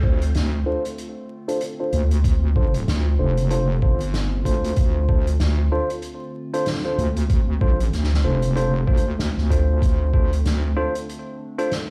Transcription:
Already playing: wobble bass D2, ambient pad D3 A3 C4 F4
0.03 tine electric piano D4 F4 A4 C5, kick
0.22 closed hi-hat
0.35 wobble bass D2, snare, closed hi-hat
0.66 tine electric piano D4 F4 A4 C5
0.85 closed hi-hat
0.98 closed hi-hat
1.48 tine electric piano D4 F4 A4 C5, closed hi-hat
1.61 closed hi-hat
1.80 tine electric piano D4 F4 A4 C5
1.92 wobble bass D2, closed hi-hat
2.11 closed hi-hat
2.24 kick, closed hi-hat
2.56 tine electric piano D4 F4 A4 C5, kick
2.74 closed hi-hat
2.87 wobble bass D2, snare, closed hi-hat
3.19 wobble bass F1, tine electric piano D4 F4 A4 C5
3.37 closed hi-hat
3.50 tine electric piano D4 F4 A4 C5, closed hi-hat
3.82 wobble bass G1, tine electric piano D4 F4 A4 C5, kick
4.00 closed hi-hat
4.14 snare, closed hi-hat
4.45 wobble bass D2, tine electric piano D4 F4 A4 C5, kick, closed hi-hat
4.64 closed hi-hat
4.76 wobble bass D2, kick, closed hi-hat
5.09 tine electric piano D4 F4 A4 C5, kick
5.27 closed hi-hat
5.40 wobble bass D2, snare, closed hi-hat
5.72 tine electric piano D4 F4 A4 C5
5.90 closed hi-hat
6.02 closed hi-hat
6.54 tine electric piano D4 F4 A4 C5, closed hi-hat
6.66 snare, closed hi-hat
6.69 snare
6.72 snare
6.75 snare
6.77 snare
6.80 snare
6.83 tine electric piano D4 F4 A4 C5, snare
6.98 wobble bass D2, closed hi-hat
7.16 closed hi-hat
7.29 kick, closed hi-hat
7.61 tine electric piano D4 F4 A4 C5, kick
7.80 closed hi-hat
7.93 wobble bass D2, snare, closed hi-hat
8.04 snare
8.14 snare
8.24 wobble bass F1, tine electric piano D4 F4 A4 C5
8.42 closed hi-hat
8.56 tine electric piano D4 F4 A4 C5, closed hi-hat
8.87 wobble bass D2, tine electric piano D4 F4 A4 C5, kick
8.97 closed hi-hat
9.19 snare, closed hi-hat
9.37 wobble bass D2, snare
9.50 tine electric piano D4 F4 A4 C5, kick, closed hi-hat
9.82 wobble bass D2, ambient pad D4, kick, closed hi-hat
10.14 tine electric piano D4 F4 A4 C5, kick
10.33 closed hi-hat
10.45 wobble bass D2, snare, closed hi-hat
10.76 tine electric piano D4 F4 A4 C5
10.95 closed hi-hat
11.09 closed hi-hat
11.59 tine electric piano D4 F4 A4 C5, closed hi-hat
11.71 snare, closed hi-hat

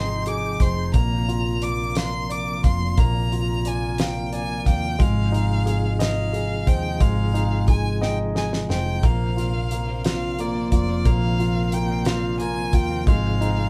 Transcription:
Already playing: fretless electric bass G#1, tonewheel organ C3 F3 G#3 D#4 G5, grand piano G#3 D#4 G#4 C5 D#5, violin C6
0.26 grand piano G#4, violin D6, closed hi-hat
0.60 fretless electric bass F1, grand piano C5, violin C6, kick, closed hi-hat
0.94 fretless electric bass A#1, grand piano A#3, tonewheel organ A#3 D4 F4, violin A#5, kick, closed hi-hat
1.28 grand piano F4, closed hi-hat
1.62 grand piano D5, violin D6, closed hi-hat
1.95 grand piano F5, violin C6, snare, closed hi-hat
2.30 grand piano D5, violin D6, closed hi-hat
2.64 fretless electric bass F1, grand piano F5, violin C6, kick, closed hi-hat
2.97 fretless electric bass A#1, grand piano A#3, violin A#5, kick, closed hi-hat
3.32 grand piano F4, closed hi-hat
3.65 grand piano D5, violin G#5, closed hi-hat
3.94 violin G#5
3.98 grand piano F5, violin G5, snare, closed hi-hat
4.33 grand piano D5, violin G#5, closed hi-hat
4.66 fretless electric bass D#2, grand piano F5, violin G5, kick, closed hi-hat
4.99 fretless electric bass G#1, tonewheel organ C3 F3 G#3 D#4, grand piano G#3, violin F5, kick, closed hi-hat
5.32 grand piano D#4, closed hi-hat
5.66 grand piano G#4, closed hi-hat
5.99 grand piano D#5, violin F5, snare, closed hi-hat
6.33 grand piano G#4, closed hi-hat
6.67 fretless electric bass D#2, grand piano C5, violin G5, kick, closed hi-hat
7.00 fretless electric bass G#1, grand piano G#3, violin F5, kick, closed hi-hat
7.34 grand piano D#4, closed hi-hat
7.68 grand piano G#4, violin G#5, kick, closed hi-hat
8.01 grand piano D#5, violin G5, snare
8.35 grand piano G#4, violin G#5, snare
8.53 snare
8.69 fretless electric bass F1, grand piano C5, violin G5, snare
9.03 fretless electric bass A#1, clean electric guitar A#2 D3 F3 A#3 C4 F4, tonewheel organ F3 A#3 D4, grand piano A#3, violin F5, kick, closed hi-hat
9.37 clean electric guitar F3 A#3 C4 F4, grand piano F4, closed hi-hat
9.54 clean electric guitar F3 A#3 C4 F4
9.71 grand piano A#3, closed hi-hat
9.88 clean electric guitar F3 A#3 C4 F4
10.04 clean electric guitar A#2 D3 F3 A#3 C4 F4, grand piano F4, violin F5, snare, closed hi-hat
10.38 clean electric guitar F3 A#3 C4 F4, grand piano A#3, violin D5, closed hi-hat
10.54 clean electric guitar F3 A#3 C4 F4
10.72 fretless electric bass F1, grand piano F4, violin D5, kick, closed hi-hat
10.88 clean electric guitar F3 A#3 C4 F4
11.05 fretless electric bass A#1, clean electric guitar A#2 D3 F3 A#3 C4 F4, grand piano A#3, violin F5, kick, closed hi-hat
11.39 clean electric guitar F3 A#3 C4 F4, grand piano F4, closed hi-hat
11.55 clean electric guitar F3 A#3 C4 F4
11.72 grand piano A#3, violin G5, closed hi-hat
11.89 clean electric guitar F3 A#3 C4 F4
12.05 clean electric guitar A#2 D3 F3 A#3 C4 F4, grand piano F4, violin F5, snare, closed hi-hat
12.39 clean electric guitar F3 A#3 C4 F4, grand piano A#3, violin G#5, closed hi-hat
12.56 clean electric guitar F3 A#3 C4 F4
12.73 fretless electric bass D#2, grand piano F4, violin G5, kick, closed hi-hat
12.90 clean electric guitar F3 A#3 C4 F4
13.07 fretless electric bass G#1, clean electric guitar G#2 D#3 F3 G#3 C4 F4, tonewheel organ C3 G#3 D#4 F4, grand piano G#3, violin F5, kick, closed hi-hat
13.40 clean electric guitar F3 G#3 C4 F4, grand piano D#4, closed hi-hat
13.56 clean electric guitar F3 G#3 C4 F4

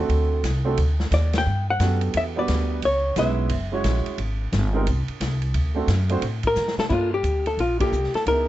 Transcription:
Already playing: upright piano A3 C4 D4
0.00 upright piano F#4 A4
0.09 upright bass D2, ride
0.43 upright bass C2, snare, hi-hat pedal, ride
0.65 upright piano A3 C4 D4 F#4 A4
0.77 upright bass D2, ride
1.00 snare
1.11 upright bass D#2, hollow-body jazz guitar D5, snare, hi-hat pedal, ride
1.33 snare, ride
1.38 hollow-body jazz guitar G5
1.46 upright bass G2
1.70 hollow-body jazz guitar F#5
1.79 upright bass F#2, upright piano B3 D4 F#4 G4 A4, snare, hi-hat pedal, ride
2.01 ride
2.14 upright bass E2, hollow-body jazz guitar E5, ride
2.36 upright piano G3 B3 D4 F#4 B4, hollow-body jazz guitar D5
2.48 upright bass D2, snare, hi-hat pedal, ride
2.82 upright bass C#2, hollow-body jazz guitar C#5, ride
3.16 upright bass B1, upright piano G#3 B3 C#4 E4 B4, hollow-body jazz guitar E5, snare, hi-hat pedal, ride
3.49 upright bass F#1, ride
3.72 upright piano G#3 C#4 E4 F#4 C#5
3.77 hollow-body jazz guitar D#5
3.84 upright bass A#1, snare, hi-hat pedal, ride
4.06 ride
4.18 upright bass G#1, ride
4.52 upright bass G1, snare, hi-hat pedal, ride
4.73 upright piano G#3 C4 D#4 G4 A#4
4.87 upright bass C2, ride
5.08 muted upright bass stroke, ride
5.20 upright bass C2, snare, hi-hat pedal, ride
5.42 ride
5.54 upright bass D2, ride
5.75 upright piano A3 C4 D4 F#4 A4
5.88 upright bass F#2, snare, hi-hat pedal, ride
6.09 upright piano A3 C4 D4 F#4 C5, ride
6.22 upright bass A2, ride
6.43 kick, ride
6.47 hollow-body jazz guitar A#4
6.55 upright bass D3, snare, hi-hat pedal
6.68 snare
6.78 hollow-body jazz guitar A4, muted upright bass stroke, snare
6.90 upright bass G2, upright piano A#3 D4 F4 A4, hollow-body jazz guitar E4 F4, kick, crash
7.14 hollow-body jazz guitar G4
7.23 upright bass D2, hi-hat pedal, ride
7.46 hollow-body jazz guitar A4, ride
7.57 upright bass A#1, hollow-body jazz guitar F4, ride
7.79 upright piano A#3 D4 F4 A4, hollow-body jazz guitar G4, kick, ride
7.92 upright bass C2, hi-hat pedal
8.04 snare
8.14 hollow-body jazz guitar A4, muted upright bass stroke, snare, ride
8.26 upright bass C#2, upright piano B3 D#4 E4 G#4, hollow-body jazz guitar A#4, ride

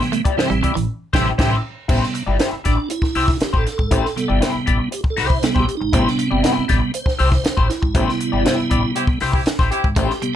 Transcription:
Already playing: tonewheel organ C3 E3 G3 B3
0.00 snare, closed hi-hat
0.12 clean electric guitar A3, muted clean electric guitar stroke, closed hi-hat
0.25 upright bass G1, clean electric guitar E4 G4 D5, kick, closed hi-hat
0.37 tonewheel organ C3 E3 G3 C4, clean electric guitar E4 G4 C5, muted upright bass stroke, snare
0.50 upright bass A1, clean electric guitar G3, muted clean electric guitar stroke, closed hi-hat
0.63 clean electric guitar E4 G4 D5, muted clean electric guitar stroke, kick, closed hi-hat
0.75 upright bass A1, clean electric guitar E3, muted clean electric guitar stroke, closed hi-hat
1.13 upright bass A1, tonewheel organ C3 E3 G3, horn section C4 E4 G4, clean electric guitar E4 G4 C5, kick, snare, crash
1.38 upright bass A1, tonewheel organ C3 E3 G3, horn section C4 E4 G4, clean electric guitar E4 G4 C5, kick, snare, crash
1.88 upright bass A1, tonewheel organ C3 G3 B3, clean electric guitar E4 G4 C5, kick, crash
2.03 snare
2.14 muted clean electric guitar stroke, closed hi-hat
2.27 upright bass G1, clean electric guitar E4 G4 D5
2.39 clean electric guitar E4 G4 C5, snare, closed hi-hat
2.52 muted clean electric guitar stroke, muted upright bass stroke
2.64 upright bass A1, tonewheel organ D4, clean electric guitar E4 G4 D5, kick, snare, closed hi-hat
2.77 muted clean electric guitar stroke
2.90 tonewheel organ E4, muted clean electric guitar stroke, closed hi-hat
3.02 muted clean electric guitar stroke, kick, snare
3.15 upright bass C2, clean electric guitar E4 G4 C5, open hi-hat
3.28 muted clean electric guitar stroke, kick, snare
3.41 tonewheel organ G4, muted clean electric guitar stroke, muted upright bass stroke, snare, closed hi-hat
3.53 upright bass A1, clean electric guitar E4 G4 C5, kick
3.58 tonewheel organ A4
3.66 muted clean electric guitar stroke, snare, closed hi-hat
3.78 upright bass G#1, muted clean electric guitar stroke, kick
3.91 upright bass A1, clean electric guitar E4 G4 C5, kick, closed hi-hat
4.05 snare
4.16 tonewheel organ C3 G3 B3, muted clean electric guitar stroke, closed hi-hat
4.28 upright bass G1, clean electric guitar E4 G4 D5
4.41 clean electric guitar E4 G4 C5, snare, closed hi-hat
4.53 muted clean electric guitar stroke, muted upright bass stroke
4.66 upright bass A1, clean electric guitar E4 G4 D5, kick, closed hi-hat
4.79 muted clean electric guitar stroke
4.91 tonewheel organ G4, muted clean electric guitar stroke, closed hi-hat
5.04 muted clean electric guitar stroke, kick
5.10 tonewheel organ A4
5.17 upright bass C2, clean electric guitar E4 G4 C5, snare, open hi-hat
5.27 tonewheel organ C5, muted clean electric guitar stroke, kick
5.42 tonewheel organ C3 G3 B3 A4, muted clean electric guitar stroke, muted upright bass stroke, snare, closed hi-hat
5.55 upright bass A1, clean electric guitar E4 G4 C5, kick
5.60 tonewheel organ G4
5.69 closed hi-hat
5.77 tonewheel organ D#4, muted clean electric guitar stroke
5.81 upright bass G#1
5.93 upright bass A1, tonewheel organ C3 G3 B3 E4, clean electric guitar E4 G4 C5, kick, closed hi-hat
6.07 tonewheel organ D4, snare
6.18 muted clean electric guitar stroke, closed hi-hat
6.28 upright bass G1, tonewheel organ C4, clean electric guitar G4 D5
6.32 clean electric guitar E4
6.43 clean electric guitar E4 G4 C5, snare, closed hi-hat
6.56 muted clean electric guitar stroke, muted upright bass stroke
6.68 upright bass A1, tonewheel organ C3 G3 B3, clean electric guitar E4 G4 D5, kick, snare, closed hi-hat
6.81 muted clean electric guitar stroke
6.94 tonewheel organ C5, closed hi-hat
7.06 muted clean electric guitar stroke, kick, snare
7.19 upright bass C2, clean electric guitar E4 G4 C5, open hi-hat
7.32 muted clean electric guitar stroke, kick, snare
7.44 muted clean electric guitar stroke, muted upright bass stroke, snare, closed hi-hat
7.57 upright bass A1, clean electric guitar E4 G4 C5, kick
7.69 tonewheel organ E4, muted clean electric guitar stroke, snare, closed hi-hat
7.82 upright bass G#1, muted clean electric guitar stroke, kick
7.94 upright bass A1, tonewheel organ C3 G3 B3, clean electric guitar E4 G4 C5, kick, closed hi-hat
8.09 snare
8.20 muted clean electric guitar stroke, closed hi-hat
8.32 upright bass G1, clean electric guitar E4 G4 D5
8.45 clean electric guitar E4 G4 C5, snare, closed hi-hat
8.57 muted clean electric guitar stroke, muted upright bass stroke
8.70 upright bass A1, clean electric guitar E4 G4 D5, kick, closed hi-hat
8.83 muted clean electric guitar stroke
8.95 tonewheel organ C3 G3 B3, horn section C4 E4 G4, muted clean electric guitar stroke, closed hi-hat
9.07 muted clean electric guitar stroke, kick
9.20 upright bass C2, clean electric guitar E4 G4 C5, snare, open hi-hat
9.33 horn section C4 E4 G4, muted clean electric guitar stroke, kick
9.46 muted clean electric guitar stroke, muted upright bass stroke, snare, closed hi-hat
9.59 upright bass A1, clean electric guitar E4 G4 C5, kick, snare
9.71 horn section C4 E4 G4, muted clean electric guitar stroke, closed hi-hat
9.84 upright bass G#1, muted clean electric guitar stroke, kick
9.96 upright bass A1, clean electric guitar A3 E4 G4 C5, tonewheel organ G4, kick, closed hi-hat, tambourine
10.10 snare
10.22 tonewheel organ C3 G3 B3, muted clean electric guitar stroke, closed hi-hat

